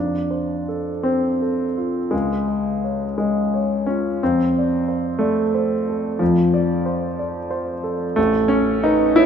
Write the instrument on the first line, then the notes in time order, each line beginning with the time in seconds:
grand piano
Already playing: F2 D4
0.31 C5
0.68 A4
1.03 C4 C5
1.42 A4
1.77 F4
2.11 C#2 G#3
2.48 D#5
2.84 C#5
3.18 G#3 D#5
3.54 C#5
3.86 C#4 F4
4.23 F2 C4
4.58 D5
4.88 C5
5.19 A3 D5
5.55 C5
5.89 A4
6.19 F2 F3
6.54 D5
6.86 C5
7.19 D5
7.51 C5
7.84 A4
8.16 A1 A3
8.48 C#4 C#5
8.84 D#4 B4
9.16 E4 C#5